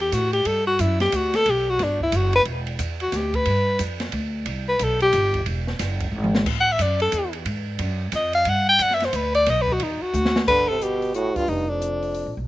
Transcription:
Already playing: upright bass E2
0.01 alto saxophone G4
0.12 upright bass A2, alto saxophone F#4, kick, hi-hat pedal, ride
0.33 alto saxophone G4, ride
0.45 upright bass G2, alto saxophone A4, kick, ride
0.67 alto saxophone F#4
0.79 upright bass F#2, alto saxophone E4, kick, hi-hat pedal, ride
1.00 alto saxophone G4, snare, ride
1.12 upright bass D2, alto saxophone F#4, kick, hi-hat pedal, ride
1.34 alto saxophone A4, snare, ride
1.46 upright bass B1, kick, ride
1.50 alto saxophone G4
1.70 alto saxophone F#4
1.79 upright bass G1, kick, snare, ride
1.83 alto saxophone D4
2.00 alto saxophone E4, kick
2.12 upright bass F#1, kick, hi-hat pedal, ride
2.16 alto saxophone F#4
2.33 alto saxophone B4, ride
2.45 upright bass E1, kick, ride
2.67 ride
2.79 upright bass E2, kick, hi-hat pedal, ride
3.00 alto saxophone F#4, ride
3.12 upright bass D2, kick, snare, hi-hat pedal, ride
3.16 alto saxophone G4
3.34 alto saxophone B4, kick, ride
3.45 upright bass G2, ride
3.79 upright bass F2, kick, hi-hat pedal, ride
4.00 snare, ride
4.12 upright bass D2, kick, ride
4.46 upright bass C2, kick, ride
4.69 alto saxophone B4
4.79 upright bass B1, kick, hi-hat pedal, ride
4.84 alto saxophone A4
5.00 alto saxophone G4, ride
5.13 upright bass G1, kick, hi-hat pedal, ride
5.34 kick, ride
5.46 upright bass E1, kick, ride
5.67 snare
5.79 upright bass F#1, kick, snare, hi-hat pedal, ride
6.00 kick, ride
6.12 upright bass G#1
6.24 mid tom
6.35 snare
6.46 upright bass A1, kick, crash
6.60 alto saxophone F#5
6.72 alto saxophone E5
6.79 upright bass F#2, alto saxophone D5, kick, hi-hat pedal, ride
7.00 alto saxophone A4, ride
7.12 upright bass E2, kick, hi-hat pedal, ride
7.33 ride
7.45 upright bass G#2, kick, ride
7.79 upright bass F#2, kick, ride
8.12 upright bass F2, alto saxophone D#5, kick, hi-hat pedal, ride
8.33 alto saxophone F5, ride
8.45 upright bass G2, alto saxophone F#5, kick, ride
8.69 alto saxophone G5
8.79 upright bass F#2, alto saxophone F#5, kick, hi-hat pedal, ride
8.91 alto saxophone E5, snare
9.00 snare, ride
9.05 alto saxophone C5
9.13 upright bass D2, alto saxophone B4, kick, hi-hat pedal, ride
9.35 alto saxophone D5, ride
9.46 upright bass B1, alto saxophone D#5, kick, snare, ride
9.62 alto saxophone B4
9.68 kick
9.73 alto saxophone F#4
9.80 upright bass E2, alto saxophone D#4, kick, ride
10.01 alto saxophone F#4, muted upright bass stroke
10.13 upright bass D2, hi-hat pedal
10.25 snare
10.36 snare
10.47 upright bass G1, trombone D3, alto saxophone B4, kick, crash
10.68 trombone C3, alto saxophone A4
10.81 trombone B2, alto saxophone G4, closed hi-hat
11.02 open hi-hat
11.14 trombone A2, alto saxophone F#4, closed hi-hat
11.36 trombone G2, alto saxophone F4, muted upright bass stroke, kick, open hi-hat
11.48 upright bass F1, trombone G2, alto saxophone D#4, kick, open hi-hat
11.69 trombone F2, alto saxophone D4
11.82 closed hi-hat
12.03 open hi-hat
12.14 open hi-hat
12.26 upright bass A1
12.37 upright bass B1

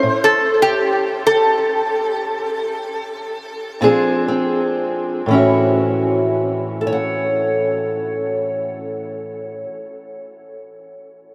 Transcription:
Already playing: resonator guitar played with a steel bar C5
0.03 steel-string acoustic guitar A2
0.24 resonator guitar played with a steel bar A4
0.62 resonator guitar played with a steel bar G4
1.27 resonator guitar played with a steel bar A4
3.81 steel-string acoustic guitar A#2 F3 C4 D4 G#4
4.28 steel-string acoustic guitar C4
5.26 steel-string acoustic guitar A2 E3
5.31 steel-string acoustic guitar C#4 E4 F#4
6.81 steel-string acoustic guitar A4
6.87 steel-string acoustic guitar C#5
6.93 steel-string acoustic guitar F#5

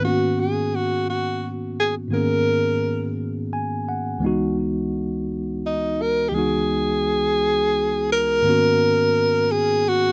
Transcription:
0.00 tine electric piano G#2 D#3 A#3 B3
0.05 tine electric piano C#4 F#4, tenor saxophone F#4
0.40 tenor saxophone G#4
0.76 tenor saxophone F#4
1.10 tenor saxophone F#4
1.80 tenor saxophone G#4
2.09 tine electric piano G#2 D#3 A#3
2.13 tine electric piano B3 C#4 G#4, tenor saxophone A#4
3.53 tine electric piano G#5
3.89 tine electric piano F#5
4.18 tine electric piano C#2 E3 G#3
4.23 tine electric piano B3 D#4 F#4
5.66 tenor saxophone D#4
6.02 tenor saxophone A#4
6.29 tine electric piano C#2 E3, tenor saxophone G4
6.34 tine electric piano G#3 B3 D#4, tenor saxophone G#4
6.39 tine electric piano F#4
8.12 tenor saxophone A#4
8.42 tine electric piano G#2 D#3 A#3
8.47 tine electric piano B3 C#4 F#4
9.51 tenor saxophone G#4
9.88 tenor saxophone F#4

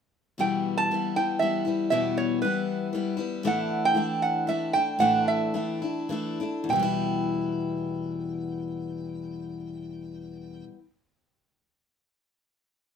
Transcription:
0.38 steel-string acoustic guitar E2 B2 E3 G3 B3 E4, resonator guitar played with a steel bar G5
0.77 resonator guitar played with a steel bar A5
0.91 steel-string acoustic guitar E3 G3 B3 E4
1.16 steel-string acoustic guitar E3 G3 B3 E4, resonator guitar played with a steel bar G5
1.39 steel-string acoustic guitar E3 G3 B3, resonator guitar played with a steel bar E5
1.44 steel-string acoustic guitar E4
1.65 steel-string acoustic guitar E3 G3 B3 E4
1.90 steel-string acoustic guitar E2 B2 E3 G3 B3 E4, resonator guitar played with a steel bar E5
2.18 resonator guitar played with a steel bar C#5
2.42 steel-string acoustic guitar E3 G3 B3, resonator guitar played with a steel bar B4
2.46 steel-string acoustic guitar E4
2.93 steel-string acoustic guitar E3 G3 B3 E4
3.17 steel-string acoustic guitar E3 G3 B3 E4
3.43 steel-string acoustic guitar A2 E3 A3 D4 E4
3.47 resonator guitar played with a steel bar F#5
3.85 resonator guitar played with a steel bar G5
3.95 steel-string acoustic guitar E3 A3 D4 E4
4.22 resonator guitar played with a steel bar F#5
4.47 steel-string acoustic guitar E3 A3 D4 E4, resonator guitar played with a steel bar E5
4.73 steel-string acoustic guitar A3 D4 E4, resonator guitar played with a steel bar G5
4.99 steel-string acoustic guitar A2 E3 A3 D4 E4, resonator guitar played with a steel bar F#5
5.28 resonator guitar played with a steel bar E5
5.54 steel-string acoustic guitar E3 A3 D4 E4
5.82 steel-string acoustic guitar A3 D4 E4
6.09 steel-string acoustic guitar E3 A3 D4 E4
6.40 steel-string acoustic guitar A3 D4 E4
6.64 steel-string acoustic guitar E2
6.69 steel-string acoustic guitar B2 E3, resonator guitar played with a steel bar G5
6.76 steel-string acoustic guitar G3 B3
6.83 steel-string acoustic guitar E4

